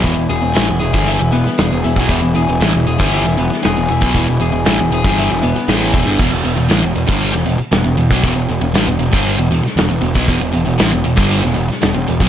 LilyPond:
<<
  \new Staff \with { instrumentName = "Clean electric guitar" } { \time 4/4 \key e \mixolydian \tempo 4 = 117 <e b e' gis'>8 gis'8 e'8 gis'8 e'8 b8 gis'8 e'8 | e8 gis'8 e'8 gis'8 e'8 b8 gis'8 e'8 | e8 gis'8 e'8 gis'8 e'8 b8 gis'8 e'8 | r1 |
r1 | r1 | }
  \new Staff \with { instrumentName = "Distorted electric guitar" } { \clef bass \time 4/4 \key e \mixolydian <e, b,>16 <e, b,>16 <e, b,>16 <e, b,>16 <a, e>16 <e, b,>16 <e, b,>16 <g, d g>8 <e, b,>16 <e, b,>16 r16 <e, b,>16 <e, b,>16 <e, b,>16 <b, fis>16 | <e, b,>16 <e, b,>16 <e, b,>16 <e, b,>16 <a, e>16 <e, b,>16 <e, b,>16 <g, d g>8 <e, b,>16 <e, b,>16 r16 <e, b,>16 <e, b,>16 <e, b,>16 <b, fis>16 | <e, b,>16 <e, b,>16 <e, b,>16 <e, b,>16 <a, e>16 <e, b,>16 <e, b,>16 <g, d g>8 <e, b,>16 <e, b,>16 r16 <a, e a>8 <e, b,>16 <g, d>16 | <e, b,>16 <e, b,>16 <e, b,>16 <e, b,>16 <a, e>16 <e, b,>16 <e, b,>16 <g, d g>8 <e, b,>16 <e, b,>16 r16 <e, b,>16 <e, b,>16 <e, b,>16 <b, fis>16 |
<e, b,>16 <e, b,>16 <e, b,>16 <e, b,>16 <a, e>16 <e, b,>16 <e, b,>16 <g, d g>8 <e, b,>16 <e, b,>16 r16 <e, b,>16 <e, b,>16 <e, b,>16 <b, fis>16 | <e, b,>16 <e, b,>16 <e, b,>16 <e, b,>16 <a, e>16 <e, b,>16 <e, b,>16 <g, d g>8 <e, b,>16 <e, b,>16 r16 <e, b,>16 <e, b,>16 <e, b,>16 <b, fis>16 | }
  \new Staff \with { instrumentName = "Picked electric bass" } { \clef bass \time 4/4 \key e \mixolydian e,,16 e,,16 e,,16 e,,16 a,,16 e,,16 e,,16 g,,8 e,,16 e,,16 r16 e,,16 e,,16 e,,16 b,,16 | e,,16 e,,16 e,,16 e,,16 a,,16 e,,16 e,,16 g,,8 e,,16 e,,16 r16 e,,16 e,,16 e,,16 b,,16 | e,,16 e,,16 e,,16 e,,16 a,,16 e,,16 e,,16 g,,8 e,,16 e,,16 r16 a,,8 e,,16 g,,16 | e,,16 e,,16 e,,16 e,,16 a,,16 e,,16 e,,16 g,,8 e,,16 e,,16 r16 e,,16 e,,16 e,,16 b,,16 |
e,,16 e,,16 e,,16 e,,16 a,,16 e,,16 e,,16 g,,8 e,,16 e,,16 r16 e,,16 e,,16 e,,16 b,,16 | e,,16 e,,16 e,,16 e,,16 a,,16 e,,16 e,,16 g,,8 e,,16 e,,16 r16 e,,16 e,,16 e,,16 b,,16 | }
  \new DrumStaff \with { instrumentName = "Drums" } \drummode { \time 4/4 <hh bd>16 hh16 hh8 <hh sn>16 hh16 hh16 <hh bd>16 hh16 hh16 hh16 <hh sn>16 <hh sn>16 hh16 hh16 bd16 | <hh bd>16 hh16 hh16 hh16 <hh sn>16 hh16 hh16 <hh bd>16 hh16 <hh sn>16 hh16 <hh sn>16 <hh sn>16 hh16 hh16 <hh bd>16 | <hh bd>16 hh16 hh8 <hh sn>16 hh16 hh16 <hh bd>16 hh16 <hh sn>16 hh16 <hh sn>16 <hh sn>16 hh16 <hh bd>8 | <cymc bd>16 hh16 hh16 hh16 <hh sn>16 hh16 hh16 <hh bd>16 hh16 <hh sn>16 hh16 hh16 <hh sn>16 hh16 hh16 <hh bd>16 |
<hh bd>16 hh16 hh8 <hh sn>16 hh16 hh16 <hh bd>16 hh16 hh16 hh16 <hh sn>16 <hh sn>16 hh16 hh16 bd16 | <hh bd>16 hh16 hh16 hh16 <hh sn>16 hh16 hh16 <hh bd>16 hh16 <hh sn>16 hh16 <hh sn>16 <hh sn>16 hh16 hh16 <hh bd>16 | }
>>